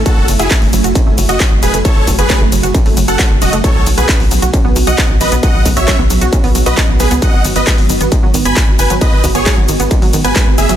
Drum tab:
RD |x-x-x-x-x-x-x-x-|x-x-x-x-x-x-x-x-|x-x-x-x-x-x-x-x-|x-x-x-x-x-x-x-x-|
HH |x-oxxooxx-oxx-ox|x-oxx-oxxooxx-ox|x-oxxooxx-oxx-ox|x-oxx-oxxooxx-ox|
SH |x-xxx-xxx-xxx-xx|x-xxx-xxx-xxx-xx|x-xxx-xxx-xxx-xx|x-xxx-xxx-xxx-xx|
CP |----x-------x---|----x-------x---|----x-------x---|----x-------x---|
BD |o---o---o---o---|o-o-o---o---o---|o---o---o---o---|o-o-o---o---o---|

RD |x-x-x-x-x-x-x-x-|x-x-x-x-x-x-x-x-|
HH |x-oxxooxx-oxx-ox|x-oxx-oxxooxx-ox|
SH |x-xxx-xxx-xxx-xx|x-xxx-xxx-xxx-xx|
CP |----x-------x---|----x-------x---|
BD |o---o---o---o---|o-o-o---o---o---|